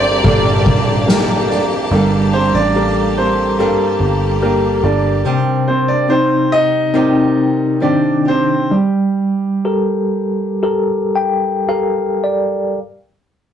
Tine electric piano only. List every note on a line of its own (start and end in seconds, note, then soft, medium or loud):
0.00 1.87 G3 medium
0.00 0.21 G4 medium
0.00 0.22 A4 soft
0.00 0.22 A#4 medium
0.23 1.05 G4 medium
0.23 1.05 A4 soft
0.23 1.05 A#4 medium
1.08 1.89 G4 medium
1.08 1.89 A#4 medium
1.92 5.21 G3 medium
2.76 3.56 G4 medium
2.76 3.57 A4 soft
2.76 3.57 A#4 medium
3.59 4.39 G4 medium
3.59 4.40 A4 soft
3.59 4.40 A#4 medium
4.42 5.23 G4 medium
4.42 5.23 A#4 medium
5.26 8.68 C3 medium
6.09 6.92 C4 medium
6.09 6.92 D#4 medium
6.94 7.79 C4 medium
6.94 7.79 D#4 medium
7.82 8.69 D#3 medium
7.82 8.69 C4 medium
7.82 8.69 D4 medium
8.71 12.74 G3 medium
9.65 10.61 G4 medium
9.65 10.61 A4 soft
9.65 10.61 A#4 medium
10.63 11.65 G4 medium
10.63 11.65 A4 medium
10.63 11.65 A#4 medium
11.16 11.65 G5 medium
11.68 12.75 G4 soft
11.68 12.75 A4 soft
11.68 12.75 A#4 medium
11.68 12.19 F5 medium
12.24 12.75 D5 medium